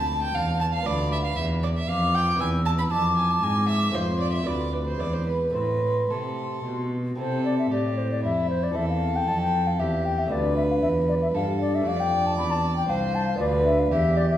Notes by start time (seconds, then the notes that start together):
Already playing: D2 A3 F4 D5 A5
0.22 G5
0.35 E2 F5
0.61 A5
0.73 F5
0.83 D2 B3 F4 B4 D5 B5
0.87 D2
1.12 E5
1.24 F5
1.37 E2 E5
1.63 D5
1.77 E5
1.88 F2 F5 D6
2.15 G5
2.35 B3 E4 B4
2.39 E2 G#5 E6
2.66 A5
2.78 B5
2.91 F2 A5 D6
3.17 G#5
3.30 A5
3.43 G#2 G#5
3.69 E5
3.90 A3 C4 F4
3.94 F2 C5 C6
4.20 D5
4.33 E5
4.43 A3 B3 F4 D5
4.47 D2 B5
4.73 B4
4.87 C5
4.97 E2 G#3 B3 E4 D5 B5
5.01 E2
5.13 C5
5.26 B4
5.51 A2 A3 C4 E4 B4
5.55 A2 C6
6.10 C3 A4
6.64 B2
7.16 C3 C4 E4 A4 C5
7.45 D5
7.59 E5
7.71 A2 G4 D5
7.98 C5
8.11 D5
8.23 F2 E4 E5
8.50 C5
8.63 D5
8.73 E2 C4 E4 A4 E5
8.89 F5
9.16 G5
9.27 F2 A5
9.41 G5
9.67 F5
9.79 E2 G4 E5
10.05 G5
10.19 E5
10.26 A3 D4 F4
10.31 D2 B4 D5
10.57 E5
10.71 F5
10.82 E2 E5
11.09 D5
11.22 E5
11.35 G2 A4 F5
11.61 D5
11.75 E5
11.82 A3 D4 F4
11.86 F2 D5 F5
12.00 G5
12.26 A5
12.38 E2 B5
12.51 A5
12.77 G5
12.89 C2 C5 F5
13.15 A5
13.27 F5
13.35 B3 D4 F4
13.39 D2 B4 D5
13.65 E5
13.79 F5
13.91 E2 G4 E5
14.17 D5
14.30 E5